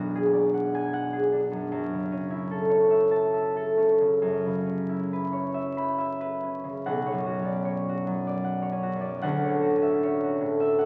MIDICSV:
0, 0, Header, 1, 2, 480
1, 0, Start_track
1, 0, Tempo, 776197
1, 1046, Time_signature, 3, 2, 24, 8
1, 1530, Tempo, 853485
1, 2010, Tempo, 904977
1, 2970, Tempo, 867052
1, 3930, Tempo, 791557
1, 5850, Tempo, 753769
1, 6370, End_track
2, 0, Start_track
2, 0, Title_t, "Harp"
2, 0, Program_c, 0, 46
2, 0, Note_on_c, 0, 35, 70
2, 0, Note_on_c, 0, 42, 46
2, 0, Note_on_c, 0, 59, 47
2, 0, Note_on_c, 0, 62, 50
2, 0, Note_on_c, 0, 66, 48
2, 0, Note_on_c, 0, 71, 56
2, 0, Note_on_c, 0, 83, 75
2, 95, Note_on_c, 0, 68, 59
2, 206, Note_on_c, 0, 74, 51
2, 334, Note_on_c, 0, 78, 56
2, 462, Note_on_c, 0, 80, 76
2, 570, Note_off_c, 0, 78, 0
2, 578, Note_on_c, 0, 78, 59
2, 691, Note_off_c, 0, 68, 0
2, 698, Note_on_c, 0, 68, 51
2, 810, Note_off_c, 0, 62, 0
2, 817, Note_on_c, 0, 62, 49
2, 930, Note_off_c, 0, 42, 0
2, 937, Note_on_c, 0, 42, 46
2, 1054, Note_off_c, 0, 42, 0
2, 1057, Note_off_c, 0, 35, 0
2, 1060, Note_off_c, 0, 71, 0
2, 1062, Note_on_c, 0, 42, 66
2, 1063, Note_off_c, 0, 74, 0
2, 1063, Note_off_c, 0, 83, 0
2, 1067, Note_off_c, 0, 59, 0
2, 1071, Note_off_c, 0, 62, 0
2, 1072, Note_off_c, 0, 68, 0
2, 1072, Note_off_c, 0, 80, 0
2, 1196, Note_on_c, 0, 49, 43
2, 1311, Note_on_c, 0, 61, 50
2, 1426, Note_on_c, 0, 64, 55
2, 1551, Note_on_c, 0, 69, 61
2, 1656, Note_on_c, 0, 73, 48
2, 1772, Note_on_c, 0, 76, 51
2, 1889, Note_on_c, 0, 81, 61
2, 2010, Note_off_c, 0, 76, 0
2, 2016, Note_on_c, 0, 76, 51
2, 2130, Note_off_c, 0, 69, 0
2, 2136, Note_on_c, 0, 69, 48
2, 2241, Note_off_c, 0, 61, 0
2, 2248, Note_on_c, 0, 61, 39
2, 2288, Note_off_c, 0, 66, 0
2, 2364, Note_off_c, 0, 49, 0
2, 2371, Note_on_c, 0, 49, 39
2, 2476, Note_off_c, 0, 42, 0
2, 2482, Note_on_c, 0, 42, 58
2, 2514, Note_off_c, 0, 49, 0
2, 2517, Note_off_c, 0, 81, 0
2, 2518, Note_off_c, 0, 69, 0
2, 2610, Note_on_c, 0, 49, 42
2, 2713, Note_off_c, 0, 61, 0
2, 2719, Note_on_c, 0, 61, 42
2, 2809, Note_off_c, 0, 78, 0
2, 2833, Note_off_c, 0, 64, 0
2, 2839, Note_on_c, 0, 64, 45
2, 2965, Note_on_c, 0, 71, 50
2, 3068, Note_off_c, 0, 73, 0
2, 3075, Note_on_c, 0, 73, 44
2, 3187, Note_off_c, 0, 76, 0
2, 3194, Note_on_c, 0, 76, 51
2, 3321, Note_on_c, 0, 83, 62
2, 3431, Note_off_c, 0, 76, 0
2, 3438, Note_on_c, 0, 76, 52
2, 3555, Note_off_c, 0, 71, 0
2, 3561, Note_on_c, 0, 71, 47
2, 3679, Note_off_c, 0, 61, 0
2, 3685, Note_on_c, 0, 61, 39
2, 3795, Note_off_c, 0, 49, 0
2, 3802, Note_on_c, 0, 49, 36
2, 3923, Note_on_c, 0, 78, 82
2, 3926, Note_on_c, 0, 35, 64
2, 3940, Note_off_c, 0, 42, 0
2, 3940, Note_off_c, 0, 64, 0
2, 3941, Note_off_c, 0, 49, 0
2, 3941, Note_off_c, 0, 76, 0
2, 4040, Note_off_c, 0, 73, 0
2, 4047, Note_on_c, 0, 73, 53
2, 4081, Note_on_c, 0, 42, 50
2, 4167, Note_on_c, 0, 66, 50
2, 4254, Note_off_c, 0, 61, 0
2, 4261, Note_on_c, 0, 61, 50
2, 4283, Note_on_c, 0, 74, 53
2, 4394, Note_off_c, 0, 73, 0
2, 4401, Note_on_c, 0, 73, 54
2, 4540, Note_off_c, 0, 66, 0
2, 4548, Note_on_c, 0, 66, 49
2, 4649, Note_off_c, 0, 42, 0
2, 4657, Note_on_c, 0, 42, 44
2, 4771, Note_off_c, 0, 74, 0
2, 4778, Note_on_c, 0, 74, 55
2, 4875, Note_off_c, 0, 78, 0
2, 4882, Note_on_c, 0, 78, 57
2, 4985, Note_off_c, 0, 73, 0
2, 4993, Note_on_c, 0, 73, 48
2, 5043, Note_off_c, 0, 61, 0
2, 5051, Note_on_c, 0, 61, 46
2, 5109, Note_off_c, 0, 66, 0
2, 5117, Note_on_c, 0, 66, 45
2, 5188, Note_off_c, 0, 42, 0
2, 5195, Note_on_c, 0, 42, 46
2, 5218, Note_off_c, 0, 74, 0
2, 5226, Note_on_c, 0, 74, 53
2, 5348, Note_off_c, 0, 78, 0
2, 5355, Note_on_c, 0, 78, 81
2, 5361, Note_on_c, 0, 38, 74
2, 5382, Note_off_c, 0, 42, 0
2, 5383, Note_off_c, 0, 71, 0
2, 5384, Note_off_c, 0, 83, 0
2, 5388, Note_off_c, 0, 35, 0
2, 5479, Note_off_c, 0, 73, 0
2, 5487, Note_on_c, 0, 73, 57
2, 5517, Note_on_c, 0, 45, 49
2, 5586, Note_off_c, 0, 66, 0
2, 5593, Note_on_c, 0, 66, 55
2, 5680, Note_off_c, 0, 61, 0
2, 5687, Note_on_c, 0, 61, 52
2, 5718, Note_on_c, 0, 76, 51
2, 5841, Note_off_c, 0, 73, 0
2, 5849, Note_on_c, 0, 73, 65
2, 5968, Note_off_c, 0, 66, 0
2, 5976, Note_on_c, 0, 66, 49
2, 6078, Note_off_c, 0, 45, 0
2, 6086, Note_on_c, 0, 45, 56
2, 6201, Note_off_c, 0, 76, 0
2, 6208, Note_on_c, 0, 76, 62
2, 6319, Note_off_c, 0, 78, 0
2, 6326, Note_on_c, 0, 78, 61
2, 6370, Note_off_c, 0, 38, 0
2, 6370, Note_off_c, 0, 45, 0
2, 6370, Note_off_c, 0, 61, 0
2, 6370, Note_off_c, 0, 66, 0
2, 6370, Note_off_c, 0, 73, 0
2, 6370, Note_off_c, 0, 74, 0
2, 6370, Note_off_c, 0, 76, 0
2, 6370, Note_off_c, 0, 78, 0
2, 6370, End_track
0, 0, End_of_file